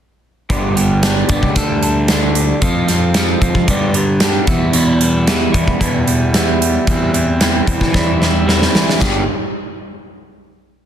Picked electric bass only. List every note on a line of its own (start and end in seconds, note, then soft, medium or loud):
0.50 1.22 G1 medium
1.29 1.41 G1 medium
1.43 1.55 C#2 medium
1.56 2.52 D2 medium
2.63 3.34 F2 medium
3.42 3.54 F2 medium
3.55 3.67 F2 medium
3.68 4.40 G2 medium
4.48 4.72 E2 medium
4.74 5.46 E2 medium
5.55 5.67 E2 loud
5.68 5.80 E2 medium
5.81 6.77 E2 medium
6.88 7.60 E2 medium
7.68 7.80 E2 medium
7.82 7.93 E3 medium
7.95 8.67 E2 medium
8.75 8.99 E3 medium
9.02 9.26 G1 medium